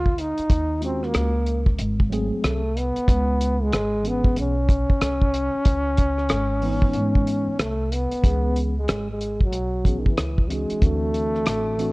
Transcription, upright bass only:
Already playing: D2
0.39 muted upright bass stroke
0.50 D#2
1.14 C#2
1.79 G#1
2.32 muted upright bass stroke
2.44 C2
3.08 C#2
3.72 G#1
4.37 B1
5.01 C2
5.55 muted upright bass stroke
5.66 C#2
6.30 G#1
6.95 G#2
7.48 muted upright bass stroke
7.59 C2
8.24 C#2
8.89 G#1
9.53 B1
10.06 muted upright bass stroke
10.18 C#2
10.71 muted upright bass stroke
10.82 D2
11.47 A1

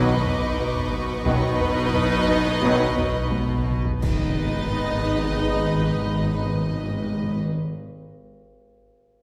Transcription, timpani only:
4.03 G#2
4.09 G#2
4.16 G#2
4.23 G#2
4.29 G#2
4.36 G#2
4.42 G#2
4.49 G#2
4.55 G#2
4.61 G#2
4.68 G#2
4.74 G#2
4.80 G#2
4.87 G#2
4.94 G#2
5.00 G#2
5.07 G#2
5.14 G#2
5.20 G#2
5.27 G#2
5.34 G#2
5.41 G#2
5.48 G#2
5.55 G#2
5.61 G#2
5.68 G#2
5.74 G#2
5.80 G#2
5.87 G#2
5.93 G#2
6.00 G#2
6.06 G#2
6.12 G#2
6.18 G#2
6.25 G#2
6.32 G#2
6.38 G#2
6.45 G#2
6.51 G#2
6.57 G#2
6.64 G#2
6.70 G#2
6.77 G#2
6.83 G#2
6.90 G#2
6.97 G#2
7.03 G#2
7.10 G#2
7.16 G#2
7.23 G#2
7.29 G#2

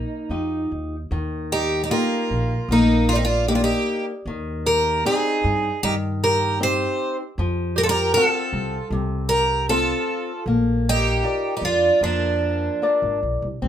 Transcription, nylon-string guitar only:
Already playing: A#3
0.31 D#4 F4 G4
1.12 D#3
1.90 A#3 D#4 G4
2.71 A#3
3.48 A#3 D#4 G4
4.27 D#3
5.05 C4 D#4 G5
5.84 D#3
6.60 C4 D#4 G4
7.39 F3
8.17 C4 F4 A4
8.92 C3
9.70 C4 F4 A4
10.48 A#3
11.23 F4 A#4 D5
12.03 F3
12.82 F4 A#4 D5
13.62 C4

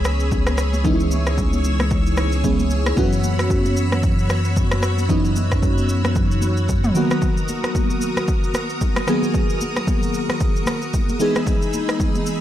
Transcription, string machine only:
Already playing: G#4 C#5 B5 E6
0.85 C#6
2.97 F#4 B5
6.95 A#4 A#5 D#6
11.20 D#4 G#4 B5 E6

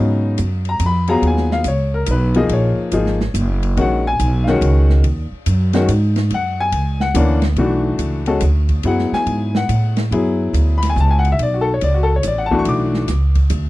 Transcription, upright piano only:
Already playing: C#3 F#3 B3 D#4
0.69 A#5
0.86 B5
1.08 F#3 B3 F4 G#4 A#5
1.27 G#5
1.52 F5
1.68 C#5
1.94 A#4
2.11 B4
2.36 F3 A#3 D#4 G#4 D#5
2.53 C#5
2.93 F3 A#3 D#4 G#4
3.77 D#3 G#3 C#4 F#4
3.81 F#5
4.07 G#5
4.44 D#3 F5
4.49 G#3 C#4 F#4 F#5
5.74 D#3 G#3 C#4 F#4
6.34 F#5
6.61 G#5
7.01 F#5
7.15 E3 A#3 C#4 D4
7.58 E3 A3 D4 F#4
8.27 G#3 C#4 F#4 A4
8.85 F#3 B3 E4 G#4 F#5
9.14 G#5
9.57 F#5
10.12 F#3 B3 E4 G#4
10.78 B5
10.90 G#5
11.00 A5
11.11 G#5
11.19 F#5
11.32 E5
11.43 D5
11.54 F#4
11.61 A4
11.74 C#5
11.84 D5
11.94 F#4
12.03 A4
12.16 C#5
12.27 D5
12.38 F#5
12.46 A5
12.51 E3 A3 D4 F#4
12.59 C#6
12.69 D6

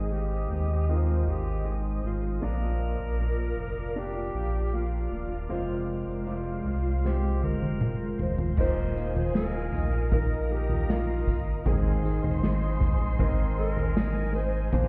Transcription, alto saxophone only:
Already playing: G#4
0.12 G4
0.89 F4
1.29 G4
2.06 F4
2.44 A#4
3.98 G4
4.75 F4
5.53 F4
6.30 F4
7.06 G4
7.44 A#4
8.22 C5
8.60 C5
9.37 A#4
10.13 A#4
10.51 G4
10.90 F4
11.67 G#4
13.58 A#4
14.35 C5
14.74 C5

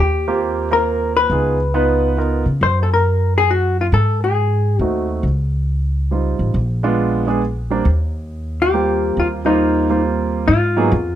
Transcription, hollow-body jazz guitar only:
0.00 G4
0.73 A#4
1.17 B4
2.63 C5
2.83 A4
2.94 A#4
3.38 G#4
3.51 F#4
3.81 F4
3.94 A4
4.24 G#4
4.83 F#4
8.62 G4
9.20 F4
9.46 D#4
10.48 F4

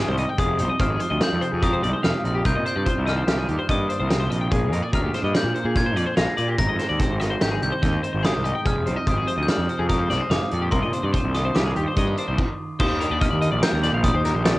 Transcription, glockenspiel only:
Already playing: D#6
0.39 D#6
0.81 F6
1.23 G6
1.64 D#6
2.05 F6
2.46 G6
2.68 G6
3.09 F6
3.29 F6
3.71 D#6
4.95 F6
5.37 G6
5.77 G#6
6.18 A#6
6.59 A#6
7.42 G6
7.63 G6
8.25 D#6
8.67 F6
9.08 D#6
9.43 G6
9.50 F6
9.89 D#6
10.31 D6
10.71 C6
11.35 D#6
11.55 D6
12.80 D#6
13.21 F6
13.63 G6
14.04 D#6

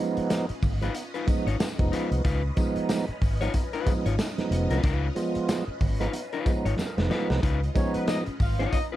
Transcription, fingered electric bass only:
0.17 muted fingered electric bass stroke
0.50 muted fingered electric bass stroke
0.62 G#1
1.28 muted fingered electric bass stroke
1.47 G#1
1.79 F1
2.11 C2
2.25 C#2
2.76 muted fingered electric bass stroke
3.08 muted fingered electric bass stroke
3.22 G#1
3.87 muted fingered electric bass stroke
4.06 G#1
4.51 F1
4.70 C2
4.84 C#2
5.36 muted fingered electric bass stroke
5.68 muted fingered electric bass stroke
5.81 G#1
6.46 muted fingered electric bass stroke
6.65 G#1
6.98 F1
7.30 C2
7.43 C#2
7.95 muted fingered electric bass stroke
8.27 muted fingered electric bass stroke
8.40 G#1

